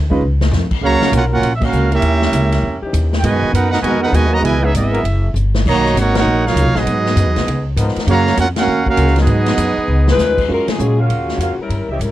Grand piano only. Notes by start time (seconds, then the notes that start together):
0.10 G#3 C#4 D#4 F4 B4
10.48 G#3 C#4 F4 F#4 A#4
10.78 G#3 C#4 F4 F#4 C#5